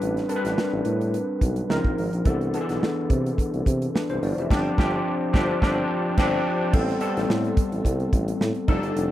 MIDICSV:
0, 0, Header, 1, 4, 480
1, 0, Start_track
1, 0, Tempo, 559180
1, 15, Time_signature, 4, 2, 24, 8
1, 7823, End_track
2, 0, Start_track
2, 0, Title_t, "Tine electric piano"
2, 0, Program_c, 0, 4
2, 0, Control_c, 0, 64, 127
2, 0, Note_on_c, 0, 55, 83
2, 0, Note_on_c, 0, 60, 69
2, 0, Note_on_c, 0, 62, 76
2, 0, Note_on_c, 0, 71, 92
2, 182, Note_off_c, 0, 55, 0
2, 184, Note_off_c, 0, 60, 0
2, 187, Note_off_c, 0, 62, 0
2, 187, Note_off_c, 0, 71, 0
2, 246, Note_on_c, 0, 55, 81
2, 247, Note_on_c, 0, 60, 67
2, 252, Note_on_c, 0, 62, 71
2, 257, Note_on_c, 0, 70, 64
2, 310, Note_on_c, 0, 71, 92
2, 316, Note_off_c, 0, 70, 0
2, 1077, Note_off_c, 0, 55, 0
2, 1078, Note_off_c, 0, 60, 0
2, 1081, Note_off_c, 0, 62, 0
2, 1109, Note_off_c, 0, 71, 0
2, 1456, Note_on_c, 0, 53, 91
2, 1458, Note_on_c, 0, 60, 78
2, 1463, Note_on_c, 0, 63, 78
2, 1465, Note_on_c, 0, 70, 97
2, 1467, Control_c, 0, 64, 0
2, 1601, Control_c, 0, 64, 127
2, 1872, Note_off_c, 0, 53, 0
2, 1873, Note_off_c, 0, 60, 0
2, 1875, Note_off_c, 0, 63, 0
2, 1876, Note_off_c, 0, 70, 0
2, 1930, Note_on_c, 0, 52, 79
2, 1938, Note_on_c, 0, 59, 83
2, 1940, Note_on_c, 0, 62, 72
2, 1943, Note_on_c, 0, 69, 93
2, 1950, Control_c, 0, 64, 0
2, 2077, Control_c, 0, 64, 127
2, 2142, Note_off_c, 0, 52, 0
2, 2146, Note_off_c, 0, 59, 0
2, 2147, Note_off_c, 0, 62, 0
2, 2148, Note_off_c, 0, 69, 0
2, 2177, Note_on_c, 0, 52, 80
2, 2183, Note_on_c, 0, 59, 70
2, 2183, Note_on_c, 0, 62, 71
2, 2185, Note_on_c, 0, 68, 67
2, 2241, Note_on_c, 0, 69, 85
2, 2242, Note_off_c, 0, 68, 0
2, 3004, Note_off_c, 0, 52, 0
2, 3007, Note_off_c, 0, 59, 0
2, 3007, Note_off_c, 0, 62, 0
2, 3036, Note_off_c, 0, 69, 0
2, 3390, Note_on_c, 0, 71, 64
2, 3395, Note_on_c, 0, 62, 57
2, 3509, Note_off_c, 0, 71, 0
2, 3511, Note_off_c, 0, 62, 0
2, 3518, Note_on_c, 0, 72, 78
2, 3527, Note_on_c, 0, 64, 62
2, 3619, Note_off_c, 0, 72, 0
2, 3624, Note_off_c, 0, 64, 0
2, 3632, Note_on_c, 0, 74, 67
2, 3750, Note_off_c, 0, 74, 0
2, 3763, Note_on_c, 0, 76, 62
2, 3768, Note_on_c, 0, 67, 49
2, 3862, Note_off_c, 0, 76, 0
2, 3864, Note_off_c, 0, 67, 0
2, 3865, Note_on_c, 0, 53, 104
2, 3867, Note_on_c, 0, 60, 103
2, 3867, Note_on_c, 0, 62, 95
2, 3869, Control_c, 0, 64, 0
2, 3873, Note_on_c, 0, 67, 96
2, 4024, Control_c, 0, 64, 127
2, 4029, Note_off_c, 0, 53, 0
2, 4030, Note_off_c, 0, 60, 0
2, 4031, Note_off_c, 0, 62, 0
2, 4034, Note_off_c, 0, 67, 0
2, 4102, Note_on_c, 0, 53, 91
2, 4104, Note_on_c, 0, 60, 95
2, 4107, Note_on_c, 0, 62, 90
2, 4109, Note_on_c, 0, 67, 100
2, 4268, Note_off_c, 0, 53, 0
2, 4269, Note_off_c, 0, 60, 0
2, 4271, Note_off_c, 0, 62, 0
2, 4272, Note_off_c, 0, 67, 0
2, 4573, Note_on_c, 0, 53, 95
2, 4574, Note_on_c, 0, 60, 98
2, 4581, Note_on_c, 0, 62, 98
2, 4582, Note_on_c, 0, 67, 104
2, 4743, Note_off_c, 0, 53, 0
2, 4743, Note_off_c, 0, 60, 0
2, 4747, Note_off_c, 0, 62, 0
2, 4748, Note_off_c, 0, 67, 0
2, 4822, Note_on_c, 0, 53, 90
2, 4826, Note_on_c, 0, 60, 92
2, 4830, Note_on_c, 0, 62, 95
2, 4834, Note_on_c, 0, 67, 91
2, 4988, Note_off_c, 0, 53, 0
2, 4990, Note_off_c, 0, 60, 0
2, 4992, Note_off_c, 0, 62, 0
2, 4994, Note_off_c, 0, 67, 0
2, 5304, Note_on_c, 0, 53, 101
2, 5307, Note_on_c, 0, 60, 102
2, 5312, Note_on_c, 0, 62, 104
2, 5315, Note_on_c, 0, 67, 100
2, 5469, Note_off_c, 0, 53, 0
2, 5470, Note_off_c, 0, 60, 0
2, 5473, Note_off_c, 0, 62, 0
2, 5475, Note_off_c, 0, 67, 0
2, 5775, Note_on_c, 0, 55, 91
2, 5777, Note_on_c, 0, 59, 81
2, 5782, Note_on_c, 0, 60, 75
2, 5783, Note_on_c, 0, 69, 96
2, 5790, Control_c, 0, 64, 0
2, 5964, Control_c, 0, 64, 127
2, 5984, Note_off_c, 0, 55, 0
2, 5985, Note_off_c, 0, 59, 0
2, 5987, Note_off_c, 0, 60, 0
2, 5988, Note_off_c, 0, 69, 0
2, 6010, Note_on_c, 0, 55, 78
2, 6013, Note_on_c, 0, 59, 69
2, 6014, Note_on_c, 0, 60, 76
2, 6021, Note_on_c, 0, 69, 82
2, 6838, Note_off_c, 0, 55, 0
2, 6839, Note_off_c, 0, 59, 0
2, 6840, Note_off_c, 0, 60, 0
2, 6843, Note_off_c, 0, 69, 0
2, 7449, Note_on_c, 0, 55, 88
2, 7451, Note_on_c, 0, 62, 79
2, 7454, Note_on_c, 0, 63, 80
2, 7458, Note_on_c, 0, 69, 103
2, 7466, Control_c, 0, 64, 0
2, 7609, Control_c, 0, 64, 127
2, 7823, Note_off_c, 0, 55, 0
2, 7823, Note_off_c, 0, 62, 0
2, 7823, Note_off_c, 0, 63, 0
2, 7823, Note_off_c, 0, 69, 0
2, 7823, End_track
3, 0, Start_track
3, 0, Title_t, "Tuba"
3, 0, Program_c, 1, 58
3, 13, Note_on_c, 1, 33, 95
3, 190, Note_off_c, 1, 33, 0
3, 378, Note_on_c, 1, 33, 91
3, 461, Note_off_c, 1, 33, 0
3, 622, Note_on_c, 1, 33, 89
3, 705, Note_off_c, 1, 33, 0
3, 732, Note_on_c, 1, 45, 96
3, 1005, Note_off_c, 1, 45, 0
3, 1215, Note_on_c, 1, 35, 92
3, 1392, Note_off_c, 1, 35, 0
3, 1458, Note_on_c, 1, 37, 94
3, 1553, Note_off_c, 1, 37, 0
3, 1584, Note_on_c, 1, 34, 82
3, 1666, Note_off_c, 1, 34, 0
3, 1701, Note_on_c, 1, 32, 94
3, 1795, Note_off_c, 1, 32, 0
3, 1828, Note_on_c, 1, 34, 79
3, 1909, Note_off_c, 1, 34, 0
3, 1938, Note_on_c, 1, 36, 107
3, 2210, Note_off_c, 1, 36, 0
3, 2308, Note_on_c, 1, 35, 83
3, 2389, Note_off_c, 1, 35, 0
3, 2662, Note_on_c, 1, 48, 99
3, 2837, Note_off_c, 1, 48, 0
3, 3028, Note_on_c, 1, 36, 89
3, 3109, Note_off_c, 1, 36, 0
3, 3147, Note_on_c, 1, 48, 93
3, 3320, Note_off_c, 1, 48, 0
3, 3516, Note_on_c, 1, 36, 77
3, 3595, Note_off_c, 1, 36, 0
3, 3625, Note_on_c, 1, 31, 98
3, 3718, Note_off_c, 1, 31, 0
3, 3754, Note_on_c, 1, 29, 72
3, 3833, Note_off_c, 1, 29, 0
3, 3867, Note_on_c, 1, 31, 99
3, 4031, Note_off_c, 1, 31, 0
3, 4104, Note_on_c, 1, 31, 101
3, 4269, Note_off_c, 1, 31, 0
3, 4583, Note_on_c, 1, 31, 105
3, 4748, Note_off_c, 1, 31, 0
3, 4825, Note_on_c, 1, 31, 94
3, 4989, Note_off_c, 1, 31, 0
3, 5302, Note_on_c, 1, 31, 100
3, 5467, Note_off_c, 1, 31, 0
3, 5783, Note_on_c, 1, 33, 96
3, 5957, Note_off_c, 1, 33, 0
3, 6149, Note_on_c, 1, 33, 92
3, 6230, Note_off_c, 1, 33, 0
3, 6259, Note_on_c, 1, 45, 100
3, 6434, Note_off_c, 1, 45, 0
3, 6627, Note_on_c, 1, 33, 79
3, 6708, Note_off_c, 1, 33, 0
3, 6735, Note_on_c, 1, 36, 94
3, 6911, Note_off_c, 1, 36, 0
3, 6977, Note_on_c, 1, 33, 91
3, 7153, Note_off_c, 1, 33, 0
3, 7216, Note_on_c, 1, 45, 91
3, 7311, Note_off_c, 1, 45, 0
3, 7453, Note_on_c, 1, 29, 101
3, 7549, Note_off_c, 1, 29, 0
3, 7581, Note_on_c, 1, 31, 82
3, 7663, Note_off_c, 1, 31, 0
3, 7690, Note_on_c, 1, 29, 97
3, 7823, Note_off_c, 1, 29, 0
3, 7823, End_track
4, 0, Start_track
4, 0, Title_t, "Drums"
4, 15, Note_on_c, 9, 42, 72
4, 100, Note_off_c, 9, 42, 0
4, 145, Note_on_c, 9, 42, 33
4, 148, Note_on_c, 9, 38, 33
4, 231, Note_off_c, 9, 42, 0
4, 234, Note_off_c, 9, 38, 0
4, 251, Note_on_c, 9, 42, 80
4, 337, Note_off_c, 9, 42, 0
4, 385, Note_on_c, 9, 42, 57
4, 392, Note_on_c, 9, 38, 39
4, 471, Note_off_c, 9, 42, 0
4, 478, Note_off_c, 9, 38, 0
4, 499, Note_on_c, 9, 38, 114
4, 584, Note_off_c, 9, 38, 0
4, 729, Note_on_c, 9, 42, 72
4, 815, Note_off_c, 9, 42, 0
4, 869, Note_on_c, 9, 42, 45
4, 955, Note_off_c, 9, 42, 0
4, 979, Note_on_c, 9, 42, 73
4, 1065, Note_off_c, 9, 42, 0
4, 1214, Note_on_c, 9, 36, 86
4, 1217, Note_on_c, 9, 42, 86
4, 1299, Note_off_c, 9, 36, 0
4, 1303, Note_off_c, 9, 42, 0
4, 1339, Note_on_c, 9, 42, 52
4, 1425, Note_off_c, 9, 42, 0
4, 1460, Note_on_c, 9, 38, 110
4, 1546, Note_off_c, 9, 38, 0
4, 1583, Note_on_c, 9, 36, 83
4, 1669, Note_off_c, 9, 36, 0
4, 1702, Note_on_c, 9, 46, 66
4, 1787, Note_off_c, 9, 46, 0
4, 1828, Note_on_c, 9, 42, 49
4, 1914, Note_off_c, 9, 42, 0
4, 1934, Note_on_c, 9, 42, 75
4, 1936, Note_on_c, 9, 36, 101
4, 2020, Note_off_c, 9, 42, 0
4, 2021, Note_off_c, 9, 36, 0
4, 2070, Note_on_c, 9, 42, 32
4, 2156, Note_off_c, 9, 42, 0
4, 2178, Note_on_c, 9, 42, 83
4, 2264, Note_off_c, 9, 42, 0
4, 2310, Note_on_c, 9, 42, 54
4, 2317, Note_on_c, 9, 38, 40
4, 2396, Note_off_c, 9, 42, 0
4, 2403, Note_off_c, 9, 38, 0
4, 2430, Note_on_c, 9, 38, 107
4, 2515, Note_off_c, 9, 38, 0
4, 2660, Note_on_c, 9, 42, 73
4, 2661, Note_on_c, 9, 36, 96
4, 2746, Note_off_c, 9, 42, 0
4, 2747, Note_off_c, 9, 36, 0
4, 2802, Note_on_c, 9, 42, 47
4, 2887, Note_off_c, 9, 42, 0
4, 2902, Note_on_c, 9, 36, 73
4, 2911, Note_on_c, 9, 42, 70
4, 2988, Note_off_c, 9, 36, 0
4, 2997, Note_off_c, 9, 42, 0
4, 3036, Note_on_c, 9, 42, 34
4, 3122, Note_off_c, 9, 42, 0
4, 3144, Note_on_c, 9, 36, 83
4, 3150, Note_on_c, 9, 42, 78
4, 3229, Note_off_c, 9, 36, 0
4, 3236, Note_off_c, 9, 42, 0
4, 3278, Note_on_c, 9, 42, 56
4, 3363, Note_off_c, 9, 42, 0
4, 3395, Note_on_c, 9, 38, 112
4, 3481, Note_off_c, 9, 38, 0
4, 3513, Note_on_c, 9, 42, 33
4, 3599, Note_off_c, 9, 42, 0
4, 3629, Note_on_c, 9, 46, 69
4, 3715, Note_off_c, 9, 46, 0
4, 3761, Note_on_c, 9, 42, 48
4, 3846, Note_off_c, 9, 42, 0
4, 3867, Note_on_c, 9, 36, 95
4, 3872, Note_on_c, 9, 49, 72
4, 3878, Note_on_c, 9, 38, 95
4, 3953, Note_off_c, 9, 36, 0
4, 3958, Note_off_c, 9, 49, 0
4, 3964, Note_off_c, 9, 38, 0
4, 4104, Note_on_c, 9, 36, 116
4, 4113, Note_on_c, 9, 38, 115
4, 4190, Note_off_c, 9, 36, 0
4, 4199, Note_off_c, 9, 38, 0
4, 4583, Note_on_c, 9, 36, 111
4, 4589, Note_on_c, 9, 38, 112
4, 4669, Note_off_c, 9, 36, 0
4, 4675, Note_off_c, 9, 38, 0
4, 4824, Note_on_c, 9, 36, 92
4, 4832, Note_on_c, 9, 38, 110
4, 4910, Note_off_c, 9, 36, 0
4, 4918, Note_off_c, 9, 38, 0
4, 5300, Note_on_c, 9, 49, 76
4, 5302, Note_on_c, 9, 36, 104
4, 5306, Note_on_c, 9, 38, 93
4, 5386, Note_off_c, 9, 49, 0
4, 5388, Note_off_c, 9, 36, 0
4, 5392, Note_off_c, 9, 38, 0
4, 5781, Note_on_c, 9, 36, 121
4, 5781, Note_on_c, 9, 49, 94
4, 5866, Note_off_c, 9, 36, 0
4, 5866, Note_off_c, 9, 49, 0
4, 5912, Note_on_c, 9, 42, 33
4, 5915, Note_on_c, 9, 38, 32
4, 5998, Note_off_c, 9, 42, 0
4, 6001, Note_off_c, 9, 38, 0
4, 6014, Note_on_c, 9, 42, 89
4, 6100, Note_off_c, 9, 42, 0
4, 6154, Note_on_c, 9, 42, 58
4, 6161, Note_on_c, 9, 38, 44
4, 6240, Note_off_c, 9, 42, 0
4, 6247, Note_off_c, 9, 38, 0
4, 6266, Note_on_c, 9, 38, 110
4, 6352, Note_off_c, 9, 38, 0
4, 6391, Note_on_c, 9, 42, 31
4, 6477, Note_off_c, 9, 42, 0
4, 6498, Note_on_c, 9, 36, 102
4, 6500, Note_on_c, 9, 42, 83
4, 6584, Note_off_c, 9, 36, 0
4, 6586, Note_off_c, 9, 42, 0
4, 6629, Note_on_c, 9, 42, 46
4, 6715, Note_off_c, 9, 42, 0
4, 6736, Note_on_c, 9, 36, 67
4, 6744, Note_on_c, 9, 42, 80
4, 6822, Note_off_c, 9, 36, 0
4, 6830, Note_off_c, 9, 42, 0
4, 6865, Note_on_c, 9, 42, 31
4, 6951, Note_off_c, 9, 42, 0
4, 6976, Note_on_c, 9, 36, 88
4, 6978, Note_on_c, 9, 42, 82
4, 7062, Note_off_c, 9, 36, 0
4, 7064, Note_off_c, 9, 42, 0
4, 7108, Note_on_c, 9, 42, 61
4, 7193, Note_off_c, 9, 42, 0
4, 7219, Note_on_c, 9, 38, 106
4, 7305, Note_off_c, 9, 38, 0
4, 7334, Note_on_c, 9, 42, 33
4, 7420, Note_off_c, 9, 42, 0
4, 7451, Note_on_c, 9, 57, 70
4, 7453, Note_on_c, 9, 36, 101
4, 7537, Note_off_c, 9, 57, 0
4, 7539, Note_off_c, 9, 36, 0
4, 7580, Note_on_c, 9, 42, 50
4, 7666, Note_off_c, 9, 42, 0
4, 7696, Note_on_c, 9, 42, 82
4, 7782, Note_off_c, 9, 42, 0
4, 7823, End_track
0, 0, End_of_file